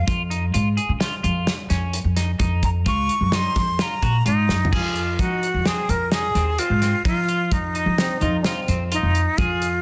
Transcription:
0.07 0.50 F2 loud
0.07 0.21 F4 medium
0.07 kick loud
0.07 closed hi-hat medium
0.30 0.44 D#4 medium
0.30 closed hi-hat medium
0.54 0.75 G#2 medium
0.54 0.68 F4 medium
0.54 closed hi-hat medium
0.77 0.91 G#4 medium
0.77 closed hi-hat medium
0.89 1.10 C#3 medium
1.00 1.14 F4 medium
1.00 snare loud
1.00 closed hi-hat medium
1.23 1.45 F2 medium
1.23 1.51 F4 medium
1.23 closed hi-hat medium
1.47 snare loud
1.47 closed hi-hat medium
1.70 2.01 F2 medium
1.70 1.98 C#4 medium
1.70 snare soft
1.70 closed hi-hat medium
1.93 closed hi-hat medium
2.04 2.36 F2 medium
2.16 2.30 D#4 medium
2.16 snare soft
2.16 closed hi-hat medium
2.39 2.82 F2 loud
2.39 2.67 D#4 medium
2.39 kick loud
2.39 closed hi-hat medium
2.63 2.70 A#5 medium
2.63 kick medium
2.63 closed hi-hat medium
2.86 3.07 C#2 loud
2.86 3.14 F4 medium
2.86 3.36 C#6 loud
2.86 kick loud
2.86 closed hi-hat medium
3.09 closed hi-hat medium
3.21 3.42 F#2 medium
3.32 3.61 D#4 medium
3.32 3.84 C6 loud
3.32 snare loud
3.32 closed hi-hat medium
3.56 3.77 F2 loud
3.56 kick medium
3.56 snare soft
3.56 closed hi-hat medium
3.79 3.94 F4 medium
3.79 4.26 A#5 medium
3.79 snare loud
3.79 closed hi-hat medium
4.02 4.23 A#2 medium
4.02 4.17 F#4 medium
4.02 kick medium
4.02 closed hi-hat medium
4.25 4.46 G#2 medium
4.25 4.76 D#4 medium
4.25 4.54 F4 medium
4.25 closed hi-hat medium
4.49 4.70 F#2 medium
4.49 snare medium
4.65 floor tom medium
4.72 5.15 F2 medium
4.72 5.21 F4 medium
4.72 5.00 G#4 medium
4.72 kick medium
4.72 crash medium
4.96 closed hi-hat medium
5.19 5.56 F3 loud
5.19 5.47 D#4 medium
5.19 5.68 F#4 medium
5.19 kick loud
5.19 closed hi-hat medium
5.43 closed hi-hat medium
5.54 5.75 F2 medium
5.66 5.94 C4 medium
5.66 5.91 G#4 medium
5.66 snare loud
5.66 closed hi-hat medium
5.89 6.31 F2 medium
5.89 6.12 A#4 medium
5.89 closed hi-hat medium
6.12 6.26 D#4 medium
6.12 6.60 G#4 medium
6.12 snare loud
6.12 closed hi-hat medium
6.35 6.56 D#2 medium
6.35 6.49 C4 medium
6.35 snare soft
6.35 closed hi-hat medium
6.58 6.73 C4 medium
6.58 7.05 F4 medium
6.58 closed hi-hat medium
6.70 6.91 G#2 medium
6.81 6.96 C4 medium
6.81 snare soft
6.81 closed hi-hat medium
7.05 7.48 F3 medium
7.05 7.19 D#4 medium
7.05 7.54 F4 medium
7.05 kick loud
7.05 closed hi-hat medium
7.28 7.57 F4 medium
7.28 closed hi-hat medium
7.51 7.83 F2 medium
7.51 8.65 D#4 medium
7.51 kick loud
7.51 closed hi-hat medium
7.75 8.03 D#4 medium
7.75 closed hi-hat medium
7.86 8.23 F3 medium
7.98 8.21 C4 medium
7.98 snare loud
7.98 closed hi-hat medium
8.21 8.42 F2 medium
8.21 8.46 D#4 medium
8.21 8.36 F4 medium
8.21 closed hi-hat medium
8.44 8.80 C4 medium
8.44 8.59 F4 medium
8.44 snare loud
8.44 closed hi-hat medium
8.68 9.00 F2 medium
8.68 8.83 C4 medium
8.68 closed hi-hat medium
8.92 9.39 D#4 medium
8.92 9.20 F4 medium
8.92 closed hi-hat medium
9.03 9.24 F2 medium
9.15 closed hi-hat medium
9.38 9.81 F2 loud
9.38 9.82 F4 medium
9.38 9.67 G#4 medium
9.38 kick loud
9.38 closed hi-hat medium
9.62 closed hi-hat medium

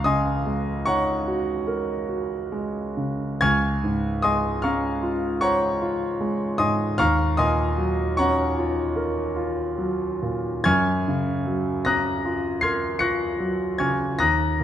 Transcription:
0.00 3.38 C#2 medium
0.00 3.44 F5 medium
0.00 0.86 A#5 medium
0.00 0.86 C#6 medium
0.00 3.42 F6 loud
0.04 0.71 C#3 soft
0.04 0.83 D#5 medium
0.04 0.83 G#5 medium
0.04 0.83 C6 medium
0.04 0.86 D#6 loud
0.46 1.11 G#3 soft
0.86 1.51 D#4 soft
0.86 3.37 C#5 medium
0.86 3.38 F#5 medium
0.86 3.37 A#5 medium
0.86 3.40 C#6 loud
1.27 1.91 F#4 medium
1.67 2.33 A#4 medium
2.08 2.78 F#4 soft
2.52 3.25 G#3 soft
2.97 3.42 C#3 soft
3.41 6.95 C#2 medium
3.41 4.20 G#5 medium
3.41 4.20 C#6 medium
3.41 4.20 F6 medium
3.41 4.23 G#6 loud
3.84 4.47 G#2 soft
4.22 4.87 G#3 medium
4.22 4.60 D#5 medium
4.22 4.60 G#5 medium
4.22 4.60 C6 medium
4.22 4.62 D#6 loud
4.62 5.26 C#4 medium
4.62 5.38 F5 medium
4.62 5.37 A#5 medium
4.62 5.38 C#6 medium
4.62 5.41 F6 medium
5.03 5.65 F4 medium
5.41 6.05 C5 medium
5.41 6.55 C#5 medium
5.41 6.55 F#5 medium
5.41 6.55 A#5 medium
5.41 6.59 C#6 loud
5.82 6.44 F4 soft
6.21 6.83 G#3 medium
6.58 6.98 G#2 medium
6.58 6.95 D#5 medium
6.58 6.96 G#5 medium
6.58 6.95 C6 medium
6.58 6.98 D#6 loud
6.98 10.62 D#2 medium
6.98 7.35 F5 medium
6.98 7.35 A#5 medium
6.98 7.35 C#6 medium
6.98 7.38 F6 loud
7.37 8.02 A#2 medium
7.37 8.14 D#5 medium
7.37 8.14 G#5 medium
7.37 8.14 C6 medium
7.37 8.17 D#6 loud
7.78 8.41 F#3 medium
8.17 8.81 C#4 soft
8.17 10.62 C#5 medium
8.17 10.62 F#5 medium
8.17 10.62 A#5 medium
8.17 10.64 C#6 loud
8.58 9.20 F4 medium
8.96 9.60 A#4 medium
9.36 10.04 F4 soft
9.78 10.49 F#3 medium
10.22 10.66 A#2 soft
10.64 14.16 F#2 medium
10.64 11.82 G#5 medium
10.64 11.82 C#6 medium
10.64 11.81 F6 medium
10.64 11.85 G#6 loud
11.08 11.71 C#3 medium
11.46 12.09 F#3 medium
11.85 12.47 C#4 medium
11.85 12.59 A#5 medium
11.85 12.58 D#6 medium
11.85 12.59 F#6 medium
11.85 12.62 A#6 loud
12.26 12.86 F4 soft
12.61 13.25 A#4 soft
12.61 12.98 C6 medium
12.61 12.99 F6 medium
12.61 12.98 G#6 medium
12.61 13.00 C7 loud
12.99 13.63 F4 soft
12.99 13.75 C#6 medium
12.99 13.75 F#6 medium
12.99 13.75 A#6 medium
12.99 13.78 C#7 loud
13.40 14.04 F#3 medium
13.78 14.20 C#3 soft
13.78 14.17 G#5 medium
13.78 14.17 C#6 medium
13.78 14.17 F6 medium
13.78 14.19 G#6 medium
14.19 14.64 D#2 medium
14.19 14.64 A#5 medium
14.19 14.64 D#6 medium
14.19 14.64 F#6 medium
14.19 14.64 A#6 loud
14.60 14.64 A#2 soft

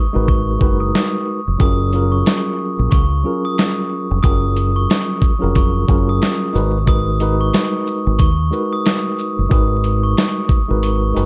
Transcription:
0.00 0.24 C#6 medium
0.13 0.58 G#1 medium
0.13 0.57 G#3 loud
0.13 0.57 D#4 medium
0.13 0.58 F#4 medium
0.13 0.58 A#4 medium
0.13 0.58 B4 loud
0.28 0.77 C#6 medium
0.28 kick loud
0.59 0.91 F#1 medium
0.59 1.38 G#3 medium
0.59 1.38 D#4 medium
0.59 1.39 F#4 medium
0.59 1.39 A#4 medium
0.59 1.39 B4 loud
0.59 kick medium
0.80 1.10 D#6 medium
0.95 snare loud
1.47 1.59 F1 medium
1.58 2.22 F#1 loud
1.58 1.90 F#3 medium
1.58 1.90 C#4 medium
1.58 1.91 F4 medium
1.58 1.91 G#4 medium
1.58 1.91 A#4 loud
1.58 2.10 D#6 medium
1.58 kick loud
1.58 closed hi-hat medium
1.93 3.00 F#3 medium
1.93 3.01 C#4 medium
1.93 3.01 F4 medium
1.93 3.01 G#4 medium
1.93 3.02 A#4 loud
1.93 closed hi-hat soft
2.12 2.87 C#6 medium
2.26 snare loud
2.26 closed hi-hat medium
2.79 2.91 A#1 medium
2.91 3.22 C#2 medium
2.91 3.41 C#6 medium
2.91 kick loud
2.91 closed hi-hat loud
3.23 4.17 F#3 medium
3.23 4.17 C#4 medium
3.23 4.17 F4 medium
3.23 4.18 G#4 medium
3.23 4.18 A#4 loud
3.45 3.74 D#6 medium
3.58 snare loud
3.58 closed hi-hat medium
4.11 4.23 F1 medium
4.22 4.86 F#1 loud
4.22 5.30 F#3 medium
4.22 5.31 C#4 medium
4.22 5.31 F4 medium
4.22 5.32 G#4 medium
4.22 5.32 A#4 loud
4.22 4.73 D#6 loud
4.22 kick loud
4.22 closed hi-hat medium
4.57 closed hi-hat soft
4.57 shaker soft
4.76 5.51 C#6 medium
4.90 snare loud
4.90 closed hi-hat medium
5.22 kick medium
5.22 shaker medium
5.39 5.84 F#3 medium
5.39 5.84 C#4 medium
5.39 5.84 F4 medium
5.39 5.85 G#4 medium
5.39 5.85 A#4 loud
5.43 5.85 F1 medium
5.55 6.06 C#6 medium
5.55 kick loud
5.55 closed hi-hat loud
5.87 6.19 F#1 medium
5.87 6.54 F#3 medium
5.87 6.54 C#4 medium
5.87 6.54 F4 medium
5.87 6.55 G#4 medium
5.87 6.54 A#4 loud
5.87 kick medium
5.87 shaker medium
6.09 6.38 D#6 medium
6.22 snare loud
6.22 closed hi-hat medium
6.53 7.50 G#1 loud
6.53 6.76 G#3 medium
6.53 6.77 D#4 medium
6.53 6.77 F#4 medium
6.53 6.77 A#4 medium
6.53 6.78 B4 loud
6.53 shaker medium
6.86 7.18 G#3 medium
6.86 7.18 D#4 medium
6.86 7.18 F#4 medium
6.86 7.19 A#4 medium
6.86 7.19 B4 loud
6.86 7.37 D#6 loud
6.86 kick loud
6.86 closed hi-hat medium
7.20 8.28 G#3 medium
7.20 8.28 D#4 medium
7.20 8.28 F#4 medium
7.20 8.29 A#4 medium
7.20 8.29 B4 loud
7.20 closed hi-hat soft
7.20 shaker soft
7.41 8.15 C#6 medium
7.54 snare loud
7.54 closed hi-hat medium
7.87 shaker medium
8.07 8.18 G#1 loud
8.19 8.50 D#2 medium
8.19 8.69 C#6 medium
8.19 kick medium
8.19 closed hi-hat loud
8.51 9.44 G#3 medium
8.51 9.44 D#4 medium
8.51 9.45 F#4 medium
8.51 9.45 A#4 medium
8.51 9.46 B4 medium
8.51 shaker medium
8.73 9.02 D#6 medium
8.86 snare loud
8.86 closed hi-hat medium
9.19 shaker medium
9.39 9.50 F#1 medium
9.49 10.13 G#1 loud
9.49 10.58 G#3 medium
9.49 10.58 D#4 medium
9.49 10.58 F#4 medium
9.49 10.59 A#4 medium
9.49 10.59 B4 loud
9.49 10.01 D#6 loud
9.49 kick loud
9.49 closed hi-hat medium
9.84 closed hi-hat soft
9.84 shaker soft
10.03 10.79 C#6 medium
10.17 snare loud
10.17 closed hi-hat medium
10.49 kick medium
10.49 shaker medium
10.68 11.12 G#1 medium
10.68 11.12 G#3 loud
10.68 11.12 D#4 medium
10.68 11.13 F#4 medium
10.68 11.13 A#4 medium
10.68 11.13 B4 loud
10.83 11.26 C#6 medium
10.83 closed hi-hat medium
11.14 11.26 F#1 medium
11.14 11.26 G#3 medium
11.14 11.26 D#4 medium
11.14 11.26 F#4 medium
11.14 11.26 A#4 medium
11.14 11.26 B4 medium
11.14 closed hi-hat medium
11.14 shaker medium

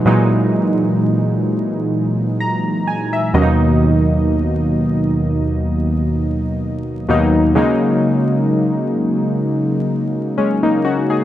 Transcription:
0.05 1.20 A#2 medium
0.05 1.21 E3 medium
0.05 1.21 F#3 medium
0.05 1.21 G#3 medium
0.05 1.21 D#4 loud
2.40 2.84 A#5 medium
2.87 3.11 G#5 medium
3.13 3.33 E5 medium
3.33 4.84 D#2 medium
3.33 4.85 B2 medium
3.33 4.85 D#3 medium
3.33 4.85 F#3 medium
3.33 4.85 A#3 medium
3.33 3.42 C#4 medium
3.33 3.78 D#5 medium
3.42 4.89 D#4 loud
7.08 7.38 D#2 medium
7.08 7.39 B2 medium
7.08 7.39 D#3 medium
7.08 7.39 F#3 medium
7.08 7.39 A#3 medium
7.08 7.39 D#4 medium
7.55 8.70 C#3 loud
7.55 8.71 F#3 medium
7.55 8.71 G#3 medium
7.55 8.71 A#3 medium
7.55 8.71 D#4 loud
10.38 10.62 G#3 medium
10.38 10.61 C#4 medium
10.63 10.83 A#3 medium
10.63 10.83 D#4 medium
10.85 11.09 C#4 medium
10.85 11.08 F#4 medium
11.10 11.24 D#4 medium
11.10 11.24 G#4 medium

